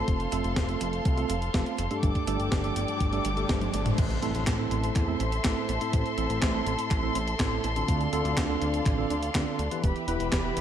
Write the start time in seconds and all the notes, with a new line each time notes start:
Already playing: A3 C4 F4 A4 C5 C6
0.08 F1 F5, kick, closed hi-hat, riser
0.20 closed hi-hat
0.32 F1 A3 C4 F4 A4, closed hi-hat
0.44 F1, closed hi-hat
0.56 F1, kick, snare, closed hi-hat
0.69 A3 C4 F4 A4, closed hi-hat
0.81 F1, closed hi-hat
0.93 closed hi-hat
1.05 C2, kick, closed hi-hat
1.17 A3 C4 F4 A4, closed hi-hat
1.30 F1, closed hi-hat
1.42 closed hi-hat
1.54 F1 A3 C4 F4 A4, kick, snare, closed hi-hat
1.66 closed hi-hat
1.78 F1, closed hi-hat
1.91 G2 A3 D4 G4 A4, closed hi-hat
2.03 G1 D5 G5 D6, kick, closed hi-hat
2.15 kick, closed hi-hat
2.27 G1 G2 A3 D4 G4 A4, closed hi-hat
2.40 G1, closed hi-hat
2.52 G1, kick, snare, closed hi-hat
2.64 G2 A3 D4 G4 A4, closed hi-hat
2.76 G1, closed hi-hat
2.88 closed hi-hat
3.00 G1, kick, closed hi-hat
3.13 G2 A3 D4 G4 A4, closed hi-hat
3.25 G1, closed hi-hat
3.37 G2 A3 D4 G4 A4, closed hi-hat
3.49 G1 G2 A3 D4 G4 C5, kick, snare, closed hi-hat, high tom
3.61 closed hi-hat, high tom
3.74 G1, closed hi-hat
3.86 closed hi-hat, mid tom
3.98 A1 A4 C5 E5 C6, kick, closed hi-hat, crash, impact
4.10 closed hi-hat
4.22 A1 A2 A3 C4 E4 A4, closed hi-hat
4.35 A1, closed hi-hat
4.47 A1, kick, snare, clap, closed hi-hat
4.59 A2 A3 C4 E4 A4
4.71 A1, closed hi-hat
4.84 closed hi-hat
4.96 E2, kick, clap, closed hi-hat
5.08 A2 A3 C4 E4 A4
5.20 A1, closed hi-hat
5.32 closed hi-hat
5.44 A1 A2 A3 C4 E4 A4, kick, snare, clap, closed hi-hat
5.69 A1, closed hi-hat
5.81 A2 A3 C4 E4 A4, closed hi-hat
5.93 A1, kick, closed hi-hat
6.06 closed hi-hat
6.18 A1 A2 A3 C4 E4 A4, closed hi-hat
6.30 A1, closed hi-hat
6.42 A1, kick, snare, clap, closed hi-hat
6.54 A2 A3 C4 E4 A4
6.67 A1, closed hi-hat
6.79 closed hi-hat
6.91 A1, kick, clap, closed hi-hat
7.03 A2 A3 C4 E4 A4
7.15 A1, closed hi-hat
7.28 closed hi-hat
7.40 A1 A2 A3 C4 E4 A4, kick, snare, clap, closed hi-hat
7.64 A1, closed hi-hat
7.76 D3 C4 D4 F4 A4, closed hi-hat
7.88 D2 D5 F5, kick, closed hi-hat
8.01 closed hi-hat
8.13 D2 D3 C4 D4 F4 A4, closed hi-hat
8.25 D2, closed hi-hat
8.37 D2, kick, snare, clap, closed hi-hat
8.49 D3 C4 D4 F4 A4
8.62 D2, closed hi-hat
8.74 closed hi-hat
8.86 A1, kick, clap, closed hi-hat
8.98 D3 C4 D4 F4 A4
9.10 D2, closed hi-hat
9.23 closed hi-hat
9.35 D2 D3 C4 D4 F4 A4, kick, snare, clap, closed hi-hat
9.59 D2, closed hi-hat
9.71 E3 B3 E4 G4 B4, closed hi-hat
9.84 E1 G4 B4 E5 B5, kick, closed hi-hat
9.96 closed hi-hat
10.08 E1 E3 B3 E4 G4 B4, closed hi-hat
10.20 E1, closed hi-hat
10.32 E1, kick, snare, clap, closed hi-hat
10.45 E3 B3 E4 G4 B4
10.56 E1, closed hi-hat